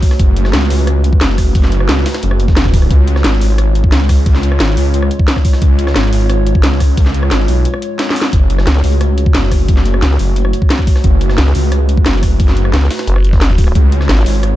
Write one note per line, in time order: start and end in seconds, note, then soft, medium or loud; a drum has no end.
0.00 2.87 A3 medium
0.00 2.87 F#4 medium
0.00 0.17 C#5 medium
0.00 kick loud
0.00 closed hi-hat medium
0.00 open hi-hat medium
0.11 cross-stick soft
0.11 snare soft
0.19 0.52 F#1 medium
0.19 2.88 B4 medium
0.19 kick loud
0.19 closed hi-hat medium
0.36 closed hi-hat medium
0.45 cross-stick soft
0.45 snare soft
0.53 0.69 C#2 medium
0.53 snare loud
0.53 closed hi-hat loud
0.53 closed hi-hat medium
0.62 closed hi-hat soft
0.70 1.20 C#2 loud
0.70 closed hi-hat medium
0.70 open hi-hat medium
0.79 closed hi-hat soft
0.87 cross-stick medium
0.87 closed hi-hat medium
1.04 closed hi-hat medium
1.13 kick loud
1.21 1.54 F#1 loud
1.21 snare loud
1.21 closed hi-hat medium
1.38 kick medium
1.38 cross-stick soft
1.38 closed hi-hat medium
1.38 open hi-hat medium
1.55 1.88 F#1 medium
1.55 kick loud
1.55 closed hi-hat medium
1.55 open hi-hat medium
1.63 snare soft
1.72 closed hi-hat medium
1.80 cross-stick soft
1.89 2.05 C#2 loud
1.89 snare loud
1.89 closed hi-hat medium
2.06 snare loud
2.06 closed hi-hat medium
2.06 open hi-hat medium
2.14 snare loud
2.14 closed hi-hat medium
2.23 2.89 F#1 medium
2.23 closed hi-hat medium
2.31 cross-stick medium
2.40 closed hi-hat medium
2.48 kick loud
2.48 snare soft
2.57 snare loud
2.57 closed hi-hat medium
2.65 kick medium
2.65 cross-stick soft
2.65 closed hi-hat soft
2.74 kick loud
2.74 closed hi-hat medium
2.74 open hi-hat medium
2.82 cross-stick soft
2.82 closed hi-hat soft
2.91 3.23 C#2 medium
2.91 8.29 G#3 medium
2.91 8.29 F4 medium
2.91 11.00 C#5 medium
2.91 kick loud
2.91 closed hi-hat medium
3.07 closed hi-hat medium
3.16 cross-stick soft
3.16 snare soft
3.24 3.40 G#1 medium
3.24 snare loud
3.24 closed hi-hat loud
3.24 closed hi-hat medium
3.33 closed hi-hat soft
3.41 3.91 G#1 loud
3.41 closed hi-hat medium
3.41 open hi-hat medium
3.50 closed hi-hat soft
3.58 cross-stick medium
3.58 closed hi-hat medium
3.75 closed hi-hat medium
3.84 kick loud
3.92 4.25 C#2 loud
3.92 snare loud
3.92 closed hi-hat medium
4.09 kick medium
4.09 cross-stick soft
4.09 closed hi-hat medium
4.09 open hi-hat medium
4.26 4.59 C#2 medium
4.26 kick loud
4.26 closed hi-hat medium
4.26 open hi-hat medium
4.35 snare soft
4.43 closed hi-hat medium
4.52 cross-stick soft
4.60 4.76 G#1 medium
4.60 snare loud
4.60 closed hi-hat medium
4.77 5.10 C#2 loud
4.77 closed hi-hat medium
4.77 open hi-hat medium
4.94 closed hi-hat medium
5.03 cross-stick medium
5.11 closed hi-hat medium
5.19 kick loud
5.28 snare loud
5.28 closed hi-hat medium
5.36 kick medium
5.36 cross-stick soft
5.45 kick loud
5.45 closed hi-hat medium
5.45 open hi-hat medium
5.53 cross-stick soft
5.53 snare soft
5.62 5.94 C#2 loud
5.62 kick loud
5.62 closed hi-hat medium
5.79 closed hi-hat medium
5.87 cross-stick soft
5.87 snare soft
5.96 6.11 G#1 loud
5.96 snare loud
5.96 closed hi-hat loud
5.96 closed hi-hat medium
6.04 closed hi-hat soft
6.13 6.62 G#1 loud
6.13 closed hi-hat medium
6.13 open hi-hat medium
6.21 closed hi-hat soft
6.30 cross-stick medium
6.30 closed hi-hat medium
6.46 closed hi-hat medium
6.55 kick loud
6.63 6.96 C#2 medium
6.63 snare loud
6.63 closed hi-hat medium
6.80 kick medium
6.80 cross-stick soft
6.80 closed hi-hat medium
6.80 open hi-hat medium
6.97 7.30 C#2 medium
6.97 kick loud
6.97 closed hi-hat loud
6.97 open hi-hat medium
7.06 snare soft
7.14 closed hi-hat medium
7.23 cross-stick soft
7.31 7.47 G#1 medium
7.31 snare loud
7.31 closed hi-hat loud
7.31 closed hi-hat medium
7.48 7.65 B1 loud
7.48 closed hi-hat medium
7.48 open hi-hat medium
7.65 closed hi-hat loud
7.65 closed hi-hat medium
7.74 cross-stick medium
7.82 closed hi-hat medium
7.99 snare loud
7.99 snare medium
7.99 closed hi-hat medium
7.99 closed hi-hat loud
8.10 snare medium
8.16 closed hi-hat medium
8.16 open hi-hat medium
8.22 snare loud
8.25 snare soft
8.33 8.66 F#1 medium
8.33 13.71 A3 medium
8.33 13.71 F#4 medium
8.33 kick loud
8.33 closed hi-hat loud
8.33 closed hi-hat medium
8.50 closed hi-hat medium
8.58 cross-stick medium
8.58 snare soft
8.67 8.83 C#2 medium
8.67 snare loud
8.67 closed hi-hat medium
8.67 closed hi-hat loud
8.75 closed hi-hat soft
8.84 9.33 C#2 loud
8.84 closed hi-hat medium
8.84 open hi-hat medium
8.92 closed hi-hat soft
9.01 cross-stick medium
9.01 closed hi-hat medium
9.01 closed hi-hat loud
9.18 closed hi-hat medium
9.26 kick loud
9.35 9.67 F#1 medium
9.35 snare loud
9.35 closed hi-hat medium
9.52 kick medium
9.52 cross-stick soft
9.52 closed hi-hat medium
9.52 open hi-hat medium
9.68 10.01 F#1 loud
9.68 kick loud
9.68 closed hi-hat medium
9.68 open hi-hat medium
9.77 snare soft
9.85 closed hi-hat medium
9.94 cross-stick medium
10.02 10.18 C#2 medium
10.02 snare loud
10.02 closed hi-hat loud
10.02 closed hi-hat medium
10.19 10.52 F#1 loud
10.19 closed hi-hat medium
10.19 open hi-hat medium
10.36 closed hi-hat medium
10.45 cross-stick medium
10.53 closed hi-hat medium
10.62 kick loud
10.70 snare loud
10.70 closed hi-hat medium
10.79 kick medium
10.79 cross-stick soft
10.87 kick loud
10.87 closed hi-hat medium
10.87 open hi-hat medium
10.96 cross-stick soft
10.96 snare soft
11.04 11.37 F#1 medium
11.04 13.73 B4 medium
11.04 kick loud
11.04 closed hi-hat medium
11.21 closed hi-hat medium
11.29 cross-stick medium
11.29 snare soft
11.38 11.54 C#2 medium
11.38 snare loud
11.38 closed hi-hat loud
11.38 closed hi-hat medium
11.47 closed hi-hat soft
11.55 12.05 C#2 loud
11.55 closed hi-hat medium
11.55 open hi-hat medium
11.64 closed hi-hat soft
11.72 cross-stick medium
11.72 closed hi-hat medium
11.89 closed hi-hat medium
11.97 kick loud
12.06 12.38 F#1 loud
12.06 snare loud
12.06 closed hi-hat medium
12.06 closed hi-hat loud
12.23 kick medium
12.23 cross-stick soft
12.23 closed hi-hat medium
12.23 open hi-hat medium
12.40 12.72 F#1 medium
12.40 kick loud
12.40 closed hi-hat medium
12.40 open hi-hat medium
12.48 snare soft
12.57 closed hi-hat medium
12.65 cross-stick soft
12.74 12.89 C#2 medium
12.74 snare loud
12.74 closed hi-hat medium
12.90 snare loud
12.90 closed hi-hat medium
12.90 open hi-hat medium
12.99 snare loud
12.99 closed hi-hat medium
13.07 13.74 F#1 medium
13.07 closed hi-hat medium
13.16 cross-stick medium
13.24 closed hi-hat medium
13.33 kick loud
13.33 snare soft
13.41 snare loud
13.41 closed hi-hat medium
13.50 kick medium
13.50 cross-stick soft
13.50 closed hi-hat soft
13.58 kick loud
13.58 closed hi-hat medium
13.58 open hi-hat medium
13.67 cross-stick soft
13.67 closed hi-hat soft
13.75 14.08 C#2 medium
13.75 14.56 G#3 medium
13.75 14.56 F4 medium
13.75 14.56 C#5 medium
13.75 kick loud
13.75 closed hi-hat medium
13.92 closed hi-hat medium
14.01 cross-stick soft
14.01 snare soft
14.09 14.25 G#1 medium
14.09 snare loud
14.09 closed hi-hat medium
14.18 closed hi-hat soft
14.26 14.56 G#1 loud
14.26 closed hi-hat medium
14.26 open hi-hat medium
14.35 closed hi-hat soft
14.43 cross-stick medium
14.43 closed hi-hat medium